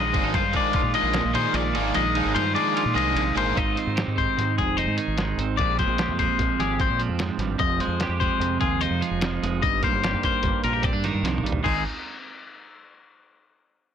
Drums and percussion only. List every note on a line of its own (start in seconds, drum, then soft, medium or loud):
0.14 kick medium
0.14 ride medium
0.34 kick loud
0.34 snare soft
0.34 ride loud
0.53 kick medium
0.53 ride medium
0.73 kick loud
0.73 snare soft
0.73 ride medium
0.94 ride medium
1.14 snare loud
1.14 ride medium
1.35 ride medium
1.54 ride loud
1.75 ride medium
1.95 ride loud
2.15 ride medium
2.36 ride loud
2.56 ride medium
2.77 ride loud
2.98 ride medium
3.17 ride loud
3.37 ride medium
3.57 kick loud
3.57 closed hi-hat medium
3.77 closed hi-hat medium
3.97 snare loud
3.97 closed hi-hat medium
4.18 kick medium
4.18 closed hi-hat medium
4.39 snare soft
4.39 closed hi-hat medium
4.58 kick medium
4.58 snare soft
4.58 closed hi-hat medium
4.78 closed hi-hat medium
4.98 closed hi-hat medium
5.18 snare loud
5.18 closed hi-hat medium
5.39 closed hi-hat medium
5.59 kick loud
5.59 closed hi-hat medium
5.79 kick medium
5.79 snare soft
5.79 closed hi-hat medium
5.98 snare loud
5.98 closed hi-hat medium
6.19 kick medium
6.19 snare soft
6.19 closed hi-hat medium
6.39 kick loud
6.39 snare soft
6.39 closed hi-hat medium
6.60 snare soft
6.60 closed hi-hat medium
6.80 kick loud
6.80 snare soft
6.80 closed hi-hat medium
7.00 closed hi-hat medium
7.19 snare loud
7.19 closed hi-hat medium
7.39 snare soft
7.39 closed hi-hat medium
7.59 kick loud
7.59 closed hi-hat medium
7.80 snare soft
7.80 closed hi-hat medium
8.00 snare loud
8.00 closed hi-hat medium
8.21 kick medium
8.21 closed hi-hat medium
8.41 closed hi-hat medium
8.61 kick medium
8.61 closed hi-hat medium
8.81 closed hi-hat medium
9.02 closed hi-hat medium
9.21 snare loud
9.21 closed hi-hat medium
9.44 snare soft
9.44 closed hi-hat medium
9.63 kick loud
9.63 closed hi-hat medium
9.83 kick medium
9.83 snare soft
9.83 closed hi-hat medium
10.04 snare loud
10.04 closed hi-hat medium
10.23 kick medium
10.23 snare soft
10.23 closed hi-hat medium
10.43 kick loud
10.43 snare soft
10.43 closed hi-hat medium
10.64 snare soft
10.64 closed hi-hat medium
10.83 kick medium
10.83 snare soft
10.83 closed hi-hat medium
11.04 snare soft
11.04 closed hi-hat medium
11.25 snare medium
11.25 closed hi-hat loud
11.38 mid tom medium
11.46 closed hi-hat medium
11.52 floor tom medium
11.65 kick medium
11.65 crash medium